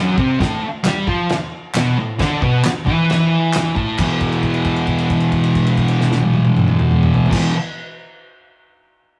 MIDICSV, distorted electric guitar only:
0, 0, Header, 1, 3, 480
1, 0, Start_track
1, 0, Key_signature, 1, "minor"
1, 0, Tempo, 448096
1, 425, Time_signature, 4, 2, 24, 8
1, 9852, End_track
2, 0, Start_track
2, 0, Title_t, "Distorted electric guitar"
2, 0, Program_c, 0, 30
2, 0, Note_on_c, 0, 42, 104
2, 0, Note_on_c, 0, 54, 119
2, 168, Note_off_c, 0, 42, 0
2, 172, Note_off_c, 0, 54, 0
2, 185, Note_on_c, 0, 48, 92
2, 196, Note_on_c, 0, 60, 106
2, 418, Note_off_c, 0, 48, 0
2, 424, Note_off_c, 0, 60, 0
2, 424, Note_on_c, 0, 45, 106
2, 435, Note_on_c, 0, 57, 117
2, 658, Note_off_c, 0, 45, 0
2, 663, Note_off_c, 0, 57, 0
2, 895, Note_on_c, 0, 55, 102
2, 911, Note_on_c, 0, 67, 118
2, 1133, Note_off_c, 0, 55, 0
2, 1141, Note_off_c, 0, 67, 0
2, 1155, Note_on_c, 0, 53, 93
2, 1162, Note_on_c, 0, 65, 103
2, 1383, Note_off_c, 0, 53, 0
2, 1387, Note_off_c, 0, 65, 0
2, 1872, Note_on_c, 0, 47, 108
2, 1890, Note_on_c, 0, 59, 106
2, 2102, Note_off_c, 0, 47, 0
2, 2110, Note_off_c, 0, 59, 0
2, 2125, Note_on_c, 0, 45, 78
2, 2307, Note_off_c, 0, 45, 0
2, 2351, Note_on_c, 0, 50, 93
2, 2360, Note_on_c, 0, 62, 113
2, 2581, Note_off_c, 0, 50, 0
2, 2586, Note_off_c, 0, 62, 0
2, 2592, Note_on_c, 0, 47, 88
2, 2599, Note_on_c, 0, 59, 115
2, 2822, Note_off_c, 0, 47, 0
2, 2825, Note_off_c, 0, 59, 0
2, 3052, Note_on_c, 0, 52, 98
2, 3060, Note_on_c, 0, 64, 108
2, 4012, Note_off_c, 0, 52, 0
2, 4016, Note_off_c, 0, 64, 0
2, 4025, Note_on_c, 0, 45, 98
2, 4028, Note_on_c, 0, 57, 96
2, 4258, Note_off_c, 0, 45, 0
2, 4258, Note_on_c, 0, 40, 96
2, 4260, Note_off_c, 0, 57, 0
2, 4290, Note_on_c, 0, 47, 108
2, 4300, Note_on_c, 0, 52, 118
2, 7811, Note_off_c, 0, 40, 0
2, 7815, Note_on_c, 0, 40, 92
2, 7830, Note_off_c, 0, 47, 0
2, 7834, Note_on_c, 0, 47, 104
2, 7841, Note_off_c, 0, 52, 0
2, 7846, Note_on_c, 0, 52, 116
2, 8034, Note_off_c, 0, 40, 0
2, 8043, Note_off_c, 0, 47, 0
2, 8049, Note_off_c, 0, 52, 0
2, 9852, End_track
3, 0, Start_track
3, 0, Title_t, "Muted distorted electric guitar strokes"
3, 671, Note_on_c, 9, 29, 65
3, 779, Note_off_c, 9, 29, 0
3, 2830, Note_on_c, 9, 29, 61
3, 2938, Note_off_c, 9, 29, 0
3, 9852, End_track
0, 0, End_of_file